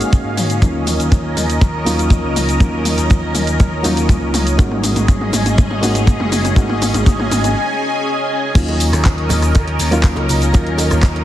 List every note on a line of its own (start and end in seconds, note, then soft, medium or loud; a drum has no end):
0.00 0.59 G#3 medium
0.00 0.59 A#3 medium
0.00 0.59 C#4 medium
0.00 4.55 C#4 medium
0.00 0.59 D#4 medium
0.00 0.60 F#4 medium
0.00 0.58 G#4 medium
0.00 0.58 D#5 medium
0.00 0.60 F5 medium
0.00 closed hi-hat medium
0.00 cabasa soft
0.13 kick loud
0.13 closed hi-hat soft
0.13 cabasa soft
0.24 0.59 G#2 loud
0.37 open hi-hat medium
0.37 mid tom medium
0.37 cabasa medium
0.50 closed hi-hat medium
0.50 cabasa soft
0.61 0.96 D#2 loud
0.61 1.83 F#3 medium
0.61 1.83 A#3 medium
0.61 1.83 C#4 medium
0.61 1.84 D#4 medium
0.61 1.84 F4 medium
0.61 4.55 A#4 medium
0.61 4.55 D#5 medium
0.61 kick loud
0.61 closed hi-hat soft
0.61 mid tom medium
0.61 cabasa soft
0.87 open hi-hat loud
0.87 mid tom medium
0.87 cabasa medium
0.99 1.33 D#2 medium
0.99 closed hi-hat medium
0.99 cabasa soft
1.12 kick loud
1.12 closed hi-hat medium
1.12 mid tom medium
1.12 cabasa soft
1.36 1.57 D#2 medium
1.36 open hi-hat medium
1.36 mid tom medium
1.36 cabasa medium
1.50 closed hi-hat medium
1.50 cabasa soft
1.61 1.82 D#2 medium
1.61 kick loud
1.61 closed hi-hat soft
1.61 mid tom medium
1.61 cabasa soft
1.85 2.20 D#2 medium
1.85 2.57 F#3 medium
1.85 2.57 A#3 medium
1.85 2.57 C#4 medium
1.85 2.58 D#4 medium
1.85 2.58 F4 medium
1.85 open hi-hat loud
1.85 mid tom medium
1.85 cabasa medium
1.99 closed hi-hat medium
1.99 cabasa soft
2.10 kick loud
2.10 closed hi-hat soft
2.10 mid tom medium
2.10 cabasa soft
2.23 2.57 C#2 loud
2.36 open hi-hat medium
2.36 mid tom medium
2.36 cabasa medium
2.49 closed hi-hat medium
2.49 cabasa soft
2.60 2.95 D#2 loud
2.60 3.81 F#3 medium
2.60 3.81 A#3 medium
2.60 3.81 C#4 medium
2.60 3.82 D#4 medium
2.60 3.82 F4 medium
2.60 kick loud
2.60 closed hi-hat medium
2.60 mid tom medium
2.60 cabasa soft
2.85 open hi-hat loud
2.85 mid tom medium
2.85 cabasa medium
2.98 3.32 D#2 loud
2.98 closed hi-hat medium
2.98 cabasa soft
3.10 kick loud
3.10 closed hi-hat soft
3.10 mid tom medium
3.10 cabasa soft
3.35 3.56 D#2 medium
3.35 open hi-hat medium
3.35 mid tom medium
3.35 cabasa medium
3.47 closed hi-hat medium
3.47 cabasa soft
3.60 3.81 D#2 medium
3.60 kick loud
3.60 closed hi-hat medium
3.60 mid tom medium
3.60 cabasa soft
3.83 4.19 D#2 loud
3.83 4.55 F#3 medium
3.83 4.55 A#3 medium
3.83 4.56 C#4 medium
3.83 4.56 D#4 medium
3.83 4.56 F4 medium
3.83 open hi-hat loud
3.83 mid tom medium
3.83 cabasa medium
3.97 closed hi-hat medium
3.97 cabasa soft
4.09 kick loud
4.09 closed hi-hat soft
4.09 mid tom medium
4.09 cabasa soft
4.22 4.56 C#2 loud
4.34 open hi-hat medium
4.34 mid tom medium
4.34 cabasa medium
4.47 closed hi-hat medium
4.47 cabasa soft
4.58 4.93 G#1 loud
4.58 5.79 G#3 medium
4.58 5.80 A#3 medium
4.58 5.80 C#4 medium
4.58 8.52 C#4 medium
4.58 5.80 D#4 medium
4.58 5.80 F#4 medium
4.58 8.52 G#4 medium
4.58 8.52 D#5 medium
4.58 kick loud
4.58 closed hi-hat medium
4.58 mid tom loud
4.58 cabasa soft
4.71 mid tom medium
4.83 open hi-hat loud
4.83 mid tom medium
4.83 cabasa medium
4.96 5.30 G#1 loud
4.96 closed hi-hat medium
4.96 mid tom medium
4.96 cabasa soft
5.08 kick loud
5.08 closed hi-hat medium
5.08 mid tom medium
5.08 cabasa soft
5.21 mid tom medium
5.33 5.54 G#1 medium
5.33 open hi-hat medium
5.33 mid tom medium
5.33 cabasa medium
5.46 closed hi-hat medium
5.46 mid tom medium
5.46 cabasa soft
5.58 5.79 G#1 medium
5.58 kick loud
5.58 closed hi-hat soft
5.58 mid tom loud
5.58 cabasa soft
5.71 mid tom medium
5.81 6.17 G#1 loud
5.81 6.54 G#3 medium
5.81 6.54 A#3 medium
5.81 6.54 C#4 medium
5.81 6.54 D#4 medium
5.81 6.54 F#4 loud
5.81 open hi-hat loud
5.81 mid tom medium
5.81 cabasa medium
5.95 closed hi-hat medium
5.95 mid tom medium
5.95 cabasa soft
6.07 kick loud
6.07 closed hi-hat medium
6.07 mid tom loud
6.07 cabasa soft
6.20 6.54 F#1 loud
6.20 mid tom medium
6.32 open hi-hat medium
6.32 mid tom loud
6.32 cabasa medium
6.45 closed hi-hat medium
6.45 mid tom medium
6.45 cabasa soft
6.56 6.91 G#1 loud
6.56 7.56 G#3 medium
6.56 7.56 A#3 medium
6.56 7.56 C#4 medium
6.56 7.57 D#4 medium
6.56 7.57 F#4 medium
6.56 8.54 G#5 medium
6.56 kick loud
6.56 closed hi-hat medium
6.56 mid tom loud
6.56 cabasa soft
6.69 mid tom medium
6.82 open hi-hat loud
6.82 mid tom loud
6.82 cabasa medium
6.94 7.28 G#1 loud
6.94 closed hi-hat medium
6.94 mid tom loud
6.94 cabasa soft
7.06 kick loud
7.06 closed hi-hat medium
7.06 mid tom loud
7.06 cabasa soft
7.20 mid tom medium
7.31 7.52 G#1 medium
7.31 open hi-hat medium
7.31 mid tom loud
7.31 cabasa medium
7.44 closed hi-hat medium
7.44 mid tom medium
7.44 cabasa soft
8.55 8.89 D#2 loud
8.55 9.76 F#3 medium
8.55 9.76 A#3 medium
8.55 9.77 C#4 medium
8.55 11.24 C#4 medium
8.55 9.77 D#4 medium
8.55 9.77 F4 medium
8.55 11.24 A#4 medium
8.55 11.24 D#5 medium
8.55 kick loud
8.55 closed hi-hat medium
8.55 crash loud
8.55 tambourine soft
8.55 cabasa soft
8.68 closed hi-hat soft
8.68 high bongo medium
8.80 open hi-hat loud
8.80 tambourine medium
8.80 cabasa medium
8.92 9.26 D#2 medium
8.92 cross-stick medium
8.92 closed hi-hat medium
8.92 tambourine soft
8.92 high bongo medium
8.92 cabasa soft
9.05 kick loud
9.05 clap loud
9.05 closed hi-hat medium
9.05 tambourine soft
9.05 cabasa soft
9.18 closed hi-hat soft
9.29 9.51 D#2 medium
9.29 open hi-hat medium
9.29 tambourine loud
9.29 high bongo medium
9.29 low conga loud
9.29 cabasa medium
9.42 cross-stick medium
9.42 closed hi-hat medium
9.42 tambourine medium
9.42 cabasa soft
9.54 9.76 D#2 medium
9.54 kick loud
9.54 closed hi-hat medium
9.54 tambourine soft
9.54 high bongo medium
9.54 cabasa soft
9.68 closed hi-hat soft
9.79 10.13 D#2 loud
9.79 open hi-hat loud
9.79 tambourine medium
9.79 cabasa medium
9.91 10.51 F#3 loud
9.91 10.51 A#3 medium
9.91 10.51 C#4 medium
9.91 10.51 D#4 medium
9.91 10.52 F4 loud
9.91 closed hi-hat medium
9.91 tambourine medium
9.91 high bongo medium
9.91 cabasa soft
10.04 kick loud
10.04 clap loud
10.04 closed hi-hat medium
10.04 tambourine soft
10.04 cabasa soft
10.16 10.50 C#2 medium
10.16 closed hi-hat soft
10.16 high bongo medium
10.29 open hi-hat loud
10.29 tambourine medium
10.29 high conga medium
10.29 cabasa medium
10.41 closed hi-hat medium
10.41 tambourine medium
10.41 cabasa soft
10.53 10.88 D#2 loud
10.53 11.24 F#3 medium
10.53 11.24 A#3 medium
10.53 11.24 C#4 medium
10.53 11.24 D#4 medium
10.53 11.24 F4 medium
10.53 kick loud
10.53 closed hi-hat medium
10.53 tambourine soft
10.53 high bongo medium
10.53 cabasa soft
10.67 closed hi-hat soft
10.78 open hi-hat loud
10.78 tambourine medium
10.78 high bongo medium
10.78 cabasa medium
10.90 11.24 D#2 loud
10.90 cross-stick medium
10.90 closed hi-hat medium
10.90 tambourine soft
10.90 low conga medium
10.90 cabasa soft
11.03 kick loud
11.03 clap loud
11.03 closed hi-hat medium
11.03 cabasa soft
11.16 closed hi-hat soft
11.16 high bongo medium